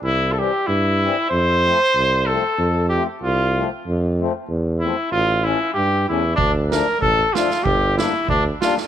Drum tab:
SD |--------|--------|--------|--------|
BD |--------|--------|--------|--------|

SD |--------|--o---oo|--o---oo|
BD |--------|o---o---|o---o---|